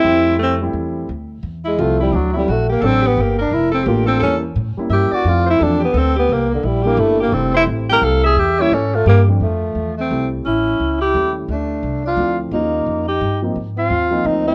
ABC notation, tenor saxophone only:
X:1
M:3/4
L:1/8
Q:"Swing" 1/4=173
K:F
V:1 name="Tenor saxophone"
E2 C z3 | [K:Dm] z3 ^G, A, =G, | ^F, G, A, B, C =B, | B, D E C B, C |
^C z3 G ^F | F E D =B, C B, | B, D, G, B, A, B, | C E z B A ^G |
G E ^C A, B, z | [K:F] A,3 C2 z | E3 G2 z | D3 F2 z |
_E3 G2 z | z F3 _E =E |]